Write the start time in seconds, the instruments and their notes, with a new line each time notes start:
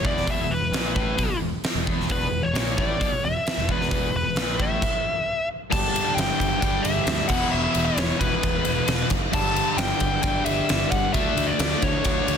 0.03 picked electric bass E1, overdriven electric guitar E2, lead electric guitar D5, kick
0.17 snare
0.26 picked electric bass E1, overdriven electric guitar E2, kick, open hi-hat
0.31 lead electric guitar E5
0.49 picked electric bass E1, overdriven electric guitar E2, lead electric guitar B4
0.60 picked electric bass E1, overdriven electric guitar E2
0.71 picked electric bass A#1, overdriven electric guitar A#2, snare, open hi-hat
0.95 picked electric bass A1, overdriven electric guitar A2, kick
1.17 picked electric bass B1, overdriven electric guitar B2, kick, open hi-hat
1.28 muted picked electric bass stroke, muted overdriven electric guitar stroke
1.40 picked electric bass E1, overdriven electric guitar E2
1.64 snare, open hi-hat
1.74 picked electric bass E1, overdriven electric guitar E2
1.87 picked electric bass E1, overdriven electric guitar E2, kick
2.00 snare
2.09 picked electric bass E1, overdriven electric guitar E2, lead electric guitar B4, kick, open hi-hat
2.30 picked electric bass E1, overdriven electric guitar E2
2.42 picked electric bass E1, overdriven electric guitar E2, lead electric guitar C#5
2.54 picked electric bass A#1, overdriven electric guitar A#2, snare, open hi-hat
2.76 picked electric bass A1, overdriven electric guitar A2, lead electric guitar D5, kick
2.99 picked electric bass B1, overdriven electric guitar B2, kick, open hi-hat
3.12 lead electric guitar C#5, muted overdriven electric guitar stroke, muted picked electric bass stroke
3.24 picked electric bass E1, overdriven electric guitar E2, lead electric guitar E5
3.47 snare, open hi-hat
3.58 picked electric bass E1, overdriven electric guitar E2
3.68 picked electric bass E1, overdriven electric guitar E2, lead electric guitar B4, kick
3.81 snare
3.90 picked electric bass E1, overdriven electric guitar E2, kick, open hi-hat
4.13 picked electric bass E1, overdriven electric guitar E2, lead electric guitar B4
4.24 picked electric bass E1, overdriven electric guitar E2
4.36 picked electric bass A#1, overdriven electric guitar A#2, snare, open hi-hat
4.58 picked electric bass A1, overdriven electric guitar A2, lead electric guitar E5, kick
4.82 kick, crash
5.70 picked electric bass G1, overdriven electric guitar G2 D3 G3, lead electric guitar A5, kick, crash
5.96 ride
6.15 picked electric bass G1, lead electric guitar G5, snare, ride
6.40 picked electric bass G1, kick, ride
6.60 picked electric bass G1, overdriven electric guitar G2 D3 G3, lead electric guitar G5, kick, ride
6.82 picked electric bass G1, lead electric guitar E5, ride
7.07 picked electric bass D2, snare, ride
7.28 picked electric bass E1, overdriven electric guitar E2 B2, lead electric guitar F#5, kick, crash
7.32 overdriven electric guitar E3
7.51 picked electric bass E1, lead electric guitar E5
7.75 picked electric bass E1, ride
7.86 lead electric guitar C#5
7.97 picked electric bass E1, snare, ride
8.19 picked electric bass E1, overdriven electric guitar E2 B2 E3, lead electric guitar B4, kick, ride
8.43 picked electric bass E1, kick, ride
8.65 picked electric bass E1, ride
8.88 picked electric bass E1, snare, ride
9.10 picked electric bass F#1, kick, ride
9.32 picked electric bass G1, overdriven electric guitar G2 D3 G3, lead electric guitar A5, kick, crash
9.56 ride
9.77 picked electric bass G1, lead electric guitar G5, snare, ride
10.00 picked electric bass G1, kick, ride
10.23 picked electric bass G1, overdriven electric guitar G2 D3 G3, lead electric guitar G5, kick, ride
10.45 picked electric bass G1, lead electric guitar E5, ride
10.69 picked electric bass G1, snare, ride
10.91 picked electric bass G1, lead electric guitar F#5, kick, ride
11.13 picked electric bass D2, overdriven electric guitar D3 A3 D4, lead electric guitar E5, kick, ride
11.37 picked electric bass D2, ride
11.47 lead electric guitar D5
11.59 picked electric bass D2, snare, ride
11.82 picked electric bass D2, lead electric guitar C#5, kick, ride
12.04 picked electric bass D2, overdriven electric guitar D3 A3 D4, kick, ride
12.28 picked electric bass D2, ride